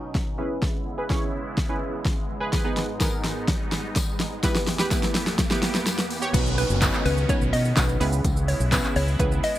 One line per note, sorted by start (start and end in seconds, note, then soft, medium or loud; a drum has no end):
0.00 0.37 B2 medium
0.00 0.37 F#3 medium
0.00 0.37 C#4 medium
0.00 0.37 D#4 medium
0.00 riser medium
0.15 kick loud
0.15 snare medium
0.38 2.51 C#3 medium
0.38 4.39 G#3 medium
0.38 2.51 B3 medium
0.38 0.86 C#4 medium
0.38 0.86 E4 medium
0.38 2.51 E4 medium
0.38 0.86 G#4 medium
0.38 0.86 B4 loud
0.62 kick loud
0.62 snare medium
0.98 1.04 G#4 medium
0.98 1.04 B4 loud
1.09 1.39 C#4 loud
1.09 1.39 E4 medium
1.09 1.40 G#4 medium
1.09 1.40 C#5 loud
1.09 kick loud
1.09 snare medium
1.58 kick loud
1.58 snare medium
1.69 2.05 C#4 medium
1.69 2.05 E4 medium
1.69 2.05 G#4 medium
1.69 2.05 B4 medium
2.05 kick loud
2.05 snare medium
2.40 2.47 G#4 loud
2.40 2.47 B4 loud
2.53 4.42 G#2 medium
2.53 4.42 B3 medium
2.53 4.42 D#4 medium
2.53 2.59 G#4 loud
2.53 2.59 B4 loud
2.53 kick loud
2.53 snare medium
2.53 closed hi-hat medium
2.53 tambourine soft
2.64 2.82 B3 loud
2.64 2.82 D#4 medium
2.64 2.83 G#4 medium
2.64 2.83 B4 loud
2.77 snare medium
2.77 closed hi-hat medium
3.00 3.48 B3 loud
3.00 3.48 D#4 medium
3.00 3.48 G#4 medium
3.00 3.48 A#4 loud
3.00 kick loud
3.00 snare medium
3.00 closed hi-hat medium
3.00 tambourine medium
3.24 snare medium
3.24 closed hi-hat soft
3.24 tambourine medium
3.48 kick loud
3.48 snare medium
3.48 closed hi-hat medium
3.72 snare loud
3.72 closed hi-hat medium
3.72 tambourine medium
3.96 kick loud
3.96 snare loud
3.96 closed hi-hat medium
3.96 tambourine medium
4.20 snare loud
4.20 closed hi-hat medium
4.20 tambourine soft
4.43 6.32 E2 medium
4.43 6.32 E3 medium
4.43 4.61 B3 loud
4.43 6.32 B3 medium
4.43 4.61 E4 loud
4.43 6.32 G4 medium
4.43 4.61 G4 loud
4.43 4.61 B4 loud
4.43 kick loud
4.43 snare loud
4.43 closed hi-hat medium
4.43 tambourine soft
4.43 shaker medium
4.55 snare loud
4.55 shaker medium
4.67 snare loud
4.67 open hi-hat medium
4.67 tambourine soft
4.67 shaker medium
4.79 4.85 G4 loud
4.79 4.85 B4 loud
4.79 snare loud
4.79 shaker medium
4.91 5.20 B3 loud
4.91 5.20 E4 loud
4.91 5.21 G4 medium
4.91 5.21 B4 loud
4.91 kick loud
4.91 snare loud
4.91 closed hi-hat medium
4.91 tambourine medium
4.91 shaker medium
5.03 snare loud
5.03 shaker soft
5.15 snare loud
5.15 open hi-hat medium
5.15 tambourine medium
5.15 shaker soft
5.27 snare loud
5.27 shaker medium
5.39 kick loud
5.39 snare loud
5.39 closed hi-hat medium
5.39 tambourine soft
5.39 shaker medium
5.50 5.86 B3 medium
5.50 5.86 E4 medium
5.50 5.86 G4 medium
5.50 5.86 B4 loud
5.50 snare loud
5.50 shaker medium
5.63 snare loud
5.63 open hi-hat medium
5.63 tambourine medium
5.63 shaker medium
5.75 snare loud
5.75 shaker medium
5.86 snare loud
5.86 closed hi-hat medium
5.86 tambourine medium
5.86 shaker medium
5.98 snare loud
5.98 shaker medium
6.10 open hi-hat medium
6.10 tambourine medium
6.10 shaker medium
6.22 6.28 G4 loud
6.22 6.28 C#5 loud
6.22 shaker medium
6.33 6.63 B1 loud
6.33 7.99 D#3 medium
6.33 6.57 B3 loud
6.33 9.59 B3 medium
6.33 6.57 C#4 medium
6.33 7.99 C#4 medium
6.33 6.57 D#4 medium
6.33 6.57 F#4 medium
6.33 6.58 B4 loud
6.33 kick loud
6.33 closed hi-hat medium
6.33 crash loud
6.33 tambourine soft
6.33 downlifter medium
6.33 shaker medium
6.46 shaker medium
6.58 6.66 B4 medium
6.58 open hi-hat medium
6.58 tambourine soft
6.58 shaker medium
6.70 6.89 F#1 medium
6.70 shaker medium
6.81 7.05 B3 loud
6.81 7.05 C#4 loud
6.81 7.05 D#4 loud
6.81 7.05 F#4 loud
6.81 7.05 B4 loud
6.81 kick loud
6.81 snare medium
6.81 clap loud
6.81 closed hi-hat medium
6.81 tambourine medium
6.81 shaker medium
6.94 clap medium
6.94 shaker soft
7.05 7.24 C#2 loud
7.05 7.13 B4 medium
7.05 open hi-hat medium
7.05 tambourine medium
7.05 shaker soft
7.18 shaker medium
7.29 7.53 B3 medium
7.29 7.53 C#4 medium
7.29 7.53 D#4 medium
7.29 7.53 F#4 medium
7.29 7.53 B4 loud
7.29 7.46 C#5 medium
7.29 kick loud
7.29 closed hi-hat medium
7.29 tambourine soft
7.29 shaker medium
7.41 7.51 B1 medium
7.41 shaker medium
7.53 7.72 B2 medium
7.53 7.61 D#5 medium
7.53 open hi-hat medium
7.53 tambourine medium
7.53 shaker medium
7.65 shaker medium
7.76 7.96 B1 loud
7.76 7.99 B3 medium
7.76 7.99 C#4 medium
7.76 8.00 D#4 medium
7.76 8.00 F#4 medium
7.76 8.00 B4 medium
7.76 kick loud
7.76 snare loud
7.76 clap loud
7.76 closed hi-hat medium
7.76 tambourine medium
7.76 shaker medium
7.89 shaker medium
8.00 8.20 C#2 loud
8.00 9.59 C#3 medium
8.00 9.59 G#3 medium
8.00 8.58 B3 loud
8.00 8.58 C#4 medium
8.00 8.58 E4 medium
8.00 9.59 E4 medium
8.00 8.58 G#4 medium
8.00 8.58 B4 loud
8.00 open hi-hat medium
8.00 tambourine medium
8.00 shaker medium
8.12 shaker medium
8.24 8.53 C#2 loud
8.24 kick loud
8.24 closed hi-hat medium
8.24 tambourine soft
8.24 shaker medium
8.37 shaker medium
8.48 8.56 C#5 medium
8.48 open hi-hat medium
8.48 tambourine soft
8.48 shaker medium
8.60 8.79 B1 medium
8.60 shaker medium
8.72 8.95 B3 loud
8.72 8.95 C#4 loud
8.72 8.95 E4 loud
8.72 8.96 G#4 loud
8.72 8.96 B4 loud
8.72 kick loud
8.72 snare medium
8.72 clap loud
8.72 closed hi-hat medium
8.72 tambourine medium
8.72 shaker medium
8.84 clap medium
8.84 shaker soft
8.96 9.15 C#2 medium
8.96 9.04 C#5 medium
8.96 open hi-hat medium
8.96 tambourine medium
8.96 shaker soft
9.08 shaker medium
9.19 9.39 C#2 loud
9.19 9.43 B3 medium
9.19 9.43 C#4 medium
9.19 9.43 E4 medium
9.19 9.43 G#4 medium
9.19 9.43 B4 medium
9.19 9.36 B4 medium
9.19 kick loud
9.19 closed hi-hat medium
9.19 shaker medium
9.32 shaker medium
9.44 9.52 D#5 medium
9.44 open hi-hat medium
9.44 tambourine medium
9.44 shaker medium
9.55 shaker medium